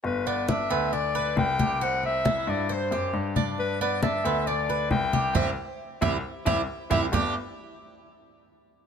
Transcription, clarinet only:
\new Staff \with { instrumentName = "Clarinet" } { \time 4/4 \key g \major \tempo 4 = 135 b'8 d''8 e''4 d''4 g''4 | fis''8 e''4 d''8 c''4 r4 | b'8 d''8 e''4 d''4 g''4 | e''8 r4 e''8 r8 e''8 r8 e''8 |
r1 | }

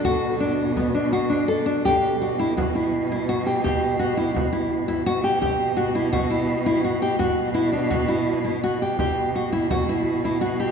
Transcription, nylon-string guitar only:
\new Staff \with { instrumentName = "Nylon-string guitar" } { \time 5/4 \key e \dorian \tempo 4 = 168 fis'4 d'4 b8 d'8 fis'8 d'8 a'8 d'8 | g'4 fis'8 e'8 fis'8 e'4 e'8 fis'8 g'8 | g'4 fis'8 e'8 fis'8 e'4 e'8 fis'8 g'8 | g'4 fis'8 e'8 fis'8 e'4 e'8 fis'8 g'8 |
fis'4 e'8 d'8 fis'8 e'4 e'8 fis'8 g'8 | g'4 fis'8 e'8 fis'8 e'4 e'8 fis'8 g'8 | }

